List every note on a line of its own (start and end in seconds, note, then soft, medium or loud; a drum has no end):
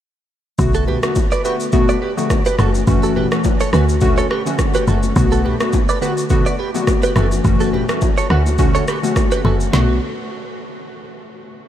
0.58 0.97 B1 loud
0.58 0.99 D3 medium
0.58 0.99 A3 medium
0.58 0.99 B3 medium
0.58 0.99 F#4 medium
0.58 kick loud
0.58 low conga medium
0.58 shaker medium
0.74 0.84 F#4 medium
0.74 0.83 A4 medium
0.74 shaker soft
0.88 0.99 G4 medium
0.88 0.98 B4 medium
0.88 low conga medium
1.03 1.24 D3 medium
1.03 1.24 A3 medium
1.03 1.24 B3 medium
1.03 1.24 F#4 medium
1.03 cross-stick loud
1.03 shaker soft
1.16 kick loud
1.16 high bongo medium
1.16 shaker medium
1.32 1.41 B4 medium
1.32 1.40 D5 medium
1.32 shaker medium
1.44 1.67 D3 medium
1.44 1.67 A3 medium
1.44 1.67 B3 medium
1.44 1.67 F#4 medium
1.44 1.56 G4 medium
1.44 1.55 B4 medium
1.44 shaker medium
1.60 shaker medium
1.72 1.95 D3 medium
1.72 1.95 A3 medium
1.72 1.95 B3 medium
1.72 1.95 F#4 loud
1.72 kick loud
1.72 low conga medium
1.72 shaker medium
1.89 1.98 B4 medium
1.89 1.98 D5 medium
1.89 shaker soft
2.02 2.13 G4 medium
2.02 2.12 B4 medium
2.17 2.38 D3 medium
2.17 2.38 A3 medium
2.17 2.38 B3 medium
2.17 2.38 F#4 medium
2.17 low bongo medium
2.17 shaker soft
2.30 kick medium
2.30 cross-stick medium
2.30 high bongo medium
2.30 shaker medium
2.46 2.55 G4 medium
2.46 2.55 B4 medium
2.46 shaker medium
2.59 2.84 F#1 loud
2.59 2.81 E3 medium
2.59 2.81 A3 medium
2.59 2.81 C#4 medium
2.59 2.81 F#4 medium
2.59 2.70 F#4 medium
2.59 2.69 A4 medium
2.59 cross-stick medium
2.59 low bongo medium
2.59 shaker medium
2.74 high bongo soft
2.74 shaker medium
2.87 3.26 F#1 loud
2.87 3.28 E3 medium
2.87 3.28 A3 medium
2.87 3.28 C#4 medium
2.87 3.28 F#4 loud
2.87 kick loud
2.87 low conga medium
2.87 shaker medium
3.03 3.12 F#4 medium
3.03 3.12 A4 medium
3.03 shaker soft
3.16 3.27 G4 medium
3.16 3.27 B4 medium
3.16 low conga medium
3.32 3.52 E3 medium
3.32 3.53 A3 medium
3.32 3.53 C#4 medium
3.32 3.53 F#4 medium
3.32 cross-stick loud
3.32 shaker soft
3.44 kick medium
3.44 high bongo medium
3.44 shaker medium
3.60 3.70 A4 medium
3.60 3.69 C#5 medium
3.60 shaker medium
3.73 4.23 D2 loud
3.73 3.95 D3 medium
3.73 3.95 A3 medium
3.73 3.95 C#4 medium
3.73 3.96 F#4 medium
3.73 3.84 F#4 medium
3.73 3.84 B4 medium
3.73 cross-stick medium
3.73 shaker medium
3.89 shaker medium
4.01 4.24 D3 medium
4.01 4.24 A3 medium
4.01 4.24 C#4 medium
4.01 4.24 F#4 loud
4.01 kick loud
4.01 low conga medium
4.01 shaker medium
4.18 4.27 A4 medium
4.18 4.26 C#5 medium
4.18 shaker medium
4.30 4.41 G4 medium
4.30 4.41 B4 medium
4.30 cross-stick medium
4.46 4.84 D3 medium
4.46 4.84 A3 medium
4.46 4.84 C#4 medium
4.46 4.85 F#4 medium
4.46 low bongo medium
4.46 shaker soft
4.59 kick medium
4.59 cross-stick medium
4.59 high bongo medium
4.59 shaker medium
4.74 4.84 G4 medium
4.74 4.83 B4 medium
4.74 shaker medium
4.87 5.12 F#1 medium
4.87 5.14 D3 medium
4.87 5.14 A3 medium
4.87 5.14 C#4 medium
4.87 5.14 F#4 medium
4.87 4.99 F#4 medium
4.87 4.98 A4 medium
4.87 low bongo medium
4.87 shaker medium
5.03 high bongo soft
5.03 shaker soft
5.16 5.54 B1 loud
5.16 5.56 D3 medium
5.16 5.57 A3 medium
5.16 5.57 B3 medium
5.16 5.57 F#4 medium
5.16 kick loud
5.16 low conga medium
5.16 shaker medium
5.32 5.41 F#4 medium
5.32 5.40 A4 medium
5.32 shaker soft
5.45 5.56 G4 medium
5.45 5.55 B4 medium
5.45 low conga medium
5.60 5.81 D3 medium
5.60 5.81 A3 medium
5.60 5.81 B3 medium
5.60 5.81 F#4 medium
5.60 cross-stick loud
5.60 shaker soft
5.73 kick loud
5.73 high bongo medium
5.73 shaker medium
5.89 5.98 B4 medium
5.89 5.98 D5 medium
5.89 shaker medium
6.02 6.24 D3 medium
6.02 6.24 A3 medium
6.02 6.24 B3 medium
6.02 6.24 F#4 medium
6.02 6.13 G4 medium
6.02 6.12 B4 medium
6.02 shaker medium
6.18 shaker medium
6.30 6.52 D3 medium
6.30 6.52 A3 medium
6.30 6.52 B3 medium
6.30 6.53 F#4 loud
6.30 kick loud
6.30 low conga medium
6.30 shaker medium
6.46 6.55 B4 medium
6.46 6.55 D5 medium
6.46 shaker medium
6.59 6.70 G4 medium
6.59 6.69 B4 medium
6.74 7.13 D3 medium
6.74 7.13 A3 medium
6.74 7.13 B3 medium
6.74 7.13 F#4 medium
6.74 low bongo medium
6.74 shaker medium
6.87 kick loud
6.87 cross-stick loud
6.87 high bongo medium
6.87 shaker medium
7.03 7.12 G4 medium
7.03 7.12 B4 medium
7.03 shaker medium
7.15 7.41 F#1 loud
7.15 7.42 E3 medium
7.15 7.42 A3 medium
7.15 7.42 C#4 medium
7.15 7.43 F#4 medium
7.15 7.27 F#4 medium
7.15 7.27 A4 medium
7.15 cross-stick medium
7.15 low bongo medium
7.15 shaker soft
7.32 high bongo soft
7.32 shaker soft
7.44 7.83 F#1 loud
7.44 7.85 E3 medium
7.44 7.85 A3 medium
7.44 7.85 C#4 medium
7.44 7.85 F#4 medium
7.44 kick loud
7.44 low conga medium
7.44 shaker medium
7.60 7.70 F#4 medium
7.60 7.69 A4 medium
7.60 shaker soft
7.73 7.84 G4 medium
7.73 7.84 B4 medium
7.73 low conga medium
7.88 8.09 E3 medium
7.88 8.09 A3 medium
7.88 8.10 C#4 medium
7.88 8.10 F#4 medium
7.88 cross-stick loud
7.88 shaker soft
8.01 kick loud
8.01 high bongo medium
8.01 shaker medium
8.18 8.27 A4 medium
8.18 8.26 C#5 medium
8.18 shaker medium
8.30 8.80 D2 loud
8.30 8.52 D3 medium
8.30 8.52 A3 medium
8.30 8.53 C#4 medium
8.30 8.53 F#4 medium
8.30 8.41 F#4 medium
8.30 8.41 B4 medium
8.30 cross-stick medium
8.46 high bongo medium
8.46 shaker medium
8.58 8.81 D3 medium
8.58 8.81 A3 medium
8.58 8.81 C#4 medium
8.58 8.81 F#4 loud
8.58 kick loud
8.58 low conga medium
8.58 shaker medium
8.75 8.84 A4 medium
8.75 8.83 C#5 medium
8.75 shaker medium
8.88 8.99 G4 medium
8.88 8.98 B4 medium
8.88 cross-stick medium
8.88 shaker medium
9.03 9.41 D3 medium
9.03 9.41 A3 medium
9.03 9.42 C#4 medium
9.03 9.42 F#4 medium
9.03 low bongo medium
9.03 shaker soft
9.16 kick loud
9.16 cross-stick medium
9.16 high bongo medium
9.16 shaker medium
9.32 9.41 G4 medium
9.32 9.40 B4 medium
9.32 shaker medium
9.44 9.69 F#1 medium
9.44 9.71 D3 medium
9.44 9.71 A3 medium
9.44 9.71 C#4 medium
9.44 9.71 F#4 medium
9.44 9.56 F#4 medium
9.44 9.55 A4 medium
9.44 low bongo medium
9.60 shaker soft
9.72 10.00 B1 loud
9.72 9.95 D3 medium
9.72 9.95 A3 medium
9.72 9.95 B3 medium
9.72 10.00 F#4 medium
9.72 9.95 F#4 medium
9.72 snare loud
9.72 low conga medium